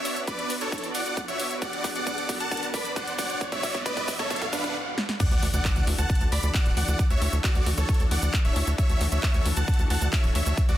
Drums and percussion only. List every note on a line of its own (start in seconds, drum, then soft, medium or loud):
0.05 open hi-hat loud
0.05 shaker medium
0.16 closed hi-hat medium
0.16 shaker soft
0.28 kick loud
0.28 closed hi-hat medium
0.28 shaker soft
0.39 closed hi-hat medium
0.50 open hi-hat loud
0.50 shaker medium
0.61 closed hi-hat medium
0.61 shaker soft
0.72 kick loud
0.72 closed hi-hat soft
0.72 shaker soft
0.78 closed hi-hat medium
0.84 closed hi-hat soft
0.84 shaker soft
0.95 open hi-hat loud
0.95 shaker medium
1.06 closed hi-hat medium
1.06 shaker soft
1.17 kick loud
1.17 closed hi-hat medium
1.17 shaker soft
1.28 closed hi-hat medium
1.28 shaker soft
1.40 open hi-hat loud
1.40 shaker medium
1.51 closed hi-hat medium
1.51 shaker soft
1.62 kick loud
1.62 closed hi-hat medium
1.62 shaker soft
1.73 closed hi-hat medium
1.84 kick loud
1.84 open hi-hat loud
1.84 shaker medium
1.96 closed hi-hat medium
1.96 shaker soft
2.07 kick loud
2.07 closed hi-hat medium
2.07 shaker soft
2.18 closed hi-hat medium
2.29 kick loud
2.29 open hi-hat loud
2.29 shaker medium
2.40 closed hi-hat medium
2.40 shaker soft
2.51 kick loud
2.51 closed hi-hat medium
2.51 shaker soft
2.57 closed hi-hat medium
2.63 closed hi-hat medium
2.63 shaker soft
2.74 kick loud
2.74 open hi-hat loud
2.74 shaker medium
2.85 closed hi-hat medium
2.85 shaker soft
2.96 kick loud
2.96 closed hi-hat medium
2.96 shaker soft
3.08 closed hi-hat medium
3.08 shaker soft
3.19 kick loud
3.19 open hi-hat loud
3.19 shaker medium
3.30 closed hi-hat medium
3.30 shaker soft
3.41 kick loud
3.41 closed hi-hat medium
3.41 shaker soft
3.52 kick medium
3.52 closed hi-hat medium
3.52 shaker soft
3.63 kick loud
3.63 open hi-hat loud
3.63 shaker medium
3.75 kick medium
3.75 closed hi-hat medium
3.75 shaker soft
3.86 kick loud
3.86 closed hi-hat medium
3.86 shaker soft
3.97 kick medium
3.97 closed hi-hat medium
3.97 shaker soft
4.08 kick loud
4.08 open hi-hat loud
4.08 shaker medium
4.19 kick medium
4.19 closed hi-hat medium
4.19 shaker soft
4.30 kick loud
4.30 closed hi-hat medium
4.30 shaker soft
4.36 closed hi-hat medium
4.42 kick loud
4.42 closed hi-hat medium
4.42 shaker soft
4.53 kick loud
4.53 open hi-hat loud
4.53 shaker medium
4.64 kick medium
4.64 closed hi-hat medium
4.64 shaker soft
4.98 snare medium
5.09 snare medium
5.20 kick loud
5.20 closed hi-hat medium
5.20 crash loud
5.20 shaker medium
5.31 closed hi-hat medium
5.31 shaker soft
5.43 open hi-hat loud
5.54 closed hi-hat medium
5.54 shaker medium
5.65 kick loud
5.65 clap loud
5.65 closed hi-hat medium
5.65 shaker soft
5.76 closed hi-hat medium
5.76 shaker soft
5.87 open hi-hat loud
5.99 closed hi-hat medium
5.99 shaker medium
6.10 kick loud
6.10 closed hi-hat medium
6.10 shaker medium
6.15 closed hi-hat medium
6.21 closed hi-hat medium
6.21 shaker soft
6.32 open hi-hat loud
6.43 closed hi-hat medium
6.43 shaker medium
6.54 kick loud
6.54 clap loud
6.54 closed hi-hat medium
6.54 shaker soft
6.66 closed hi-hat medium
6.66 shaker soft
6.77 open hi-hat loud
6.88 closed hi-hat medium
6.88 shaker medium
6.99 kick loud
6.99 closed hi-hat medium
6.99 shaker medium
7.10 closed hi-hat medium
7.10 shaker soft
7.22 open hi-hat loud
7.33 closed hi-hat medium
7.33 shaker medium
7.44 kick loud
7.44 clap loud
7.44 closed hi-hat medium
7.44 shaker medium
7.55 closed hi-hat medium
7.55 shaker soft
7.66 open hi-hat loud
7.78 closed hi-hat medium
7.78 shaker medium
7.89 kick loud
7.89 closed hi-hat soft
7.89 shaker medium
7.94 closed hi-hat medium
8.00 closed hi-hat medium
8.00 shaker soft
8.11 open hi-hat loud
8.22 closed hi-hat medium
8.22 shaker medium
8.33 kick loud
8.33 clap loud
8.33 closed hi-hat medium
8.33 shaker soft
8.45 closed hi-hat medium
8.45 shaker soft
8.56 open hi-hat loud
8.67 closed hi-hat medium
8.67 shaker medium
8.78 kick loud
8.78 closed hi-hat medium
8.78 shaker medium
8.90 closed hi-hat medium
8.90 shaker soft
9.01 open hi-hat loud
9.12 closed hi-hat medium
9.12 shaker medium
9.23 kick loud
9.23 clap loud
9.23 closed hi-hat medium
9.23 shaker medium
9.34 closed hi-hat medium
9.34 shaker soft
9.46 open hi-hat loud
9.57 closed hi-hat medium
9.57 shaker medium
9.68 kick loud
9.68 closed hi-hat soft
9.68 shaker medium
9.74 closed hi-hat medium
9.79 closed hi-hat soft
9.79 shaker soft
9.90 open hi-hat loud
10.02 closed hi-hat medium
10.02 shaker medium
10.13 kick loud
10.13 clap loud
10.13 closed hi-hat medium
10.13 shaker medium
10.24 closed hi-hat medium
10.24 shaker soft
10.35 open hi-hat loud
10.46 closed hi-hat medium
10.46 shaker medium
10.57 kick loud
10.57 closed hi-hat medium
10.57 shaker medium
10.69 closed hi-hat medium
10.69 shaker soft